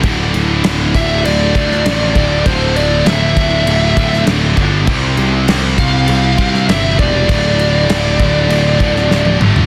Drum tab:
CC |x-x-x-x-x-x-x-x-|x-x-x-x-x-x-x-x-|x-x-x-x-x-x-x-x-|x-x-x-x-x-x-----|
SD |----o------oo---|----o------oo---|----o------oo---|----o------oo---|
T1 |----------------|----------------|----------------|-------------o--|
T2 |----------------|----------------|----------------|--------------o-|
FT |----------------|----------------|----------------|---------------o|
BD |o-----o---o---o-|o-----o---o---o-|o-----o---o---o-|o-----o---o-----|